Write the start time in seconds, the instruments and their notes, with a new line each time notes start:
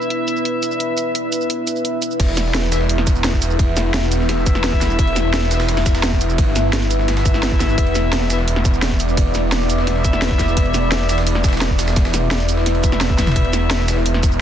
Already playing: ambient pad B3 E4 D5, brass ensemble E4 B4 E5, analog synth pad E4 B4 E5
0.02 shaker
0.10 closed hi-hat
0.28 closed hi-hat, shaker
0.37 shaker
0.45 closed hi-hat
0.63 closed hi-hat, shaker
0.71 shaker
0.80 closed hi-hat
0.98 closed hi-hat, shaker
1.15 closed hi-hat
1.32 closed hi-hat, shaker
1.41 shaker
1.50 closed hi-hat
1.67 closed hi-hat, shaker
1.76 shaker
1.85 closed hi-hat
2.02 closed hi-hat, shaker
2.11 shaker
2.20 detuned saw bass E1, ambient pad B3 E4 E5, kick, closed hi-hat, crash, ride
2.28 ride
2.37 snare, closed hi-hat, ride, shaker
2.55 snare, closed hi-hat, ride
2.63 snare
2.72 brass ensemble E4 B4 E5, snare, closed hi-hat, ride, shaker
2.81 snare
2.89 closed hi-hat, ride
2.98 snare
3.07 detuned saw bass E1, kick, closed hi-hat, ride, shaker
3.16 shaker
3.24 snare, closed hi-hat, ride
3.33 kick
3.42 closed hi-hat, ride, shaker
3.51 shaker
3.59 detuned saw bass E1, kick, closed hi-hat, ride
3.77 snare, closed hi-hat, ride, shaker
3.94 snare, closed hi-hat, ride
4.03 shaker
4.11 brass ensemble E4 B4 E5, closed hi-hat, ride, shaker
4.20 snare
4.29 snare, closed hi-hat, ride
4.38 snare
4.46 detuned saw bass E1, kick, closed hi-hat, ride, shaker
4.55 snare, shaker
4.64 snare, closed hi-hat, ride
4.73 kick
4.81 kick, snare, closed hi-hat, ride, shaker
4.90 shaker
4.99 detuned saw bass E1, kick, closed hi-hat, ride
5.07 ride
5.16 snare, closed hi-hat, ride, shaker
5.34 snare, closed hi-hat, ride
5.42 snare
5.51 brass ensemble E4 B4 E5, snare, closed hi-hat, ride, shaker
5.60 snare, ride
5.68 snare, closed hi-hat, ride
5.77 snare, ride
5.86 detuned saw bass E1, kick, snare, closed hi-hat, ride, shaker
5.95 snare, ride, shaker
6.03 snare, closed hi-hat, ride
6.12 kick
6.21 closed hi-hat, ride, shaker
6.30 shaker
6.38 detuned saw bass G1, kick, closed hi-hat, ride
6.56 snare, closed hi-hat, ride, shaker
6.73 snare, closed hi-hat, ride
6.82 shaker
6.91 brass ensemble E4 B4 E5, closed hi-hat, ride, shaker
6.99 snare
7.08 snare, closed hi-hat, ride
7.17 snare, ride
7.25 kick, closed hi-hat, ride, shaker
7.34 snare, shaker
7.43 snare, closed hi-hat, ride
7.52 kick
7.60 kick, snare, closed hi-hat, ride, shaker
7.69 shaker
7.78 detuned saw bass E1, ambient pad D5, kick, closed hi-hat, ride
7.87 ride
7.95 snare, closed hi-hat, ride, shaker
8.13 snare, closed hi-hat, ride
8.21 snare
8.30 brass ensemble E4 B4 E5, snare, closed hi-hat, ride, shaker
8.39 snare
8.48 closed hi-hat, ride
8.56 snare
8.65 detuned saw bass E1, kick, closed hi-hat, ride, shaker
8.74 shaker
8.82 snare, closed hi-hat, ride
8.91 kick
9.00 closed hi-hat, ride, shaker
9.09 shaker
9.17 detuned saw bass E1, kick, closed hi-hat, ride
9.35 snare, closed hi-hat, ride, shaker
9.52 snare, closed hi-hat, ride
9.61 shaker
9.70 brass ensemble E4 B4 E5, closed hi-hat, ride, shaker
9.78 snare
9.87 snare, closed hi-hat, ride
9.96 snare
10.05 detuned saw bass E1, kick, closed hi-hat, ride, shaker
10.13 snare, shaker
10.22 snare, closed hi-hat, ride
10.31 kick
10.39 kick, snare, closed hi-hat, ride, shaker
10.48 shaker
10.57 detuned saw bass E1, kick, closed hi-hat, ride
10.66 ride
10.74 snare, closed hi-hat, ride, shaker
10.92 snare, closed hi-hat, ride
11.00 snare
11.09 brass ensemble E4 B4 E5, snare, closed hi-hat, ride, shaker
11.18 snare, ride
11.27 closed hi-hat, ride
11.35 snare
11.44 detuned saw bass E1, kick, snare, closed hi-hat, ride, shaker
11.48 snare, ride
11.53 snare, ride, shaker
11.57 snare, ride
11.61 snare, closed hi-hat, ride
11.70 kick
11.79 snare, closed hi-hat, ride, shaker
11.88 snare, ride, shaker
11.96 detuned saw bass E1, kick, snare, closed hi-hat, ride
12.05 snare, ride
12.14 snare, closed hi-hat, ride, shaker
12.31 snare, closed hi-hat, ride
12.40 shaker
12.49 brass ensemble E4 B4 E5, closed hi-hat, ride, shaker
12.57 snare
12.66 snare, closed hi-hat, ride
12.75 ride
12.84 kick, closed hi-hat, ride, shaker
12.92 snare, shaker
13.01 snare, closed hi-hat, ride
13.10 kick
13.18 kick, snare, closed hi-hat, high tom, ride, shaker
13.27 snare, mid tom, ride, shaker
13.32 snare, ride
13.36 detuned saw bass E1, ambient pad E5, kick, closed hi-hat, ride
13.45 ride
13.53 snare, closed hi-hat, ride, shaker
13.71 snare, closed hi-hat, ride
13.79 snare
13.88 brass ensemble E4 B4 E5, snare, closed hi-hat, ride, shaker
13.97 snare
14.06 closed hi-hat, ride
14.14 snare
14.23 detuned saw bass E1, kick, closed hi-hat, ride, shaker
14.32 shaker